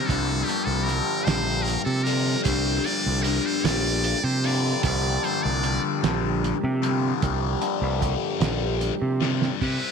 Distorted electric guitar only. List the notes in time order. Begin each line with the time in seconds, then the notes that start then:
0.09 G2 D3 G3
0.48 G2 D3 G3
0.88 G2 D3 G3
1.27 G2 D3 G3
2.07 G2 D3 G3
2.46 G2 D3 G3
2.86 G2 D3 G3
3.26 G2 D3 G3
3.66 G2 D3 G3
4.44 G2 D3 G3
4.83 G2 D3 G3
5.23 G2 D3 G3
5.64 G2 D3 G3
6.02 G2 D3 G3
6.82 G2 D3 G3
7.22 G2 D3 G3
7.61 G2 D3 G3
8.00 G2 D3 G3
8.40 G2 D3 G3
9.20 G2 D3 G3
9.60 C3 G3 C4